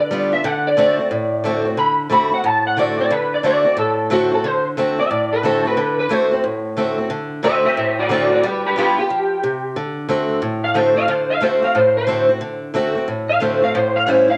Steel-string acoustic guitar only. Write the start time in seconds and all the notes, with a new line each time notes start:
Already playing: D3
0.11 G3 B3 F4
0.32 B3 F4
0.44 D3
0.77 D3 A3 C4 F#4
0.99 C4 F#4
1.11 A2
1.44 D3 A3 C4 F#4
1.65 C4 F#4
1.77 D3
2.10 D3 A3 C4 F#4
2.31 C4 F#4
2.44 A2
2.77 D3 A3 C4 F#4
2.98 C4 F#4
3.11 D3
3.43 D3 A3 C4 F#4
3.65 C4 F#4
3.77 A2
4.10 D3 A3 C4 F#4
4.31 C4 F#4
4.44 D3
4.77 D3 A3 C4 F#4
4.98 C4 F#4
5.11 A2
5.43 D3 A3 C4 F#4
5.65 C4 F#4
5.77 D3
6.09 D3 A3 C4 F#4
6.31 C4 F#4
6.44 A2
6.77 D3 A3 C4 F#4
6.98 C4 F#4
7.10 D3
7.43 D3 A3 C4 F#4
7.65 C4 F#4
7.77 A2
8.09 D3 A3 C4 F#4
8.31 C4 F#4
8.43 G3
8.76 G3 B3 F4
8.98 B3 F4
9.10 F3
9.43 C3
9.76 D3
10.09 D3 A3 C4 F#4
10.42 A2
10.74 D3 A3 C4 F#4
10.96 C4 F#4
11.08 D3
11.41 D3 A3 C4 F#4
11.62 C4 F#4
11.75 A2
12.07 D3 A3 C4 F#4
12.29 C4 F#4
12.41 D3
12.74 D3 A3 C4 F#4
12.95 C4 F#4
13.08 A2
13.40 D3 A3 C4 F#4
13.62 C4 F#4
13.75 A2
14.07 E3 G3 C#4 E4
14.28 C#4 E4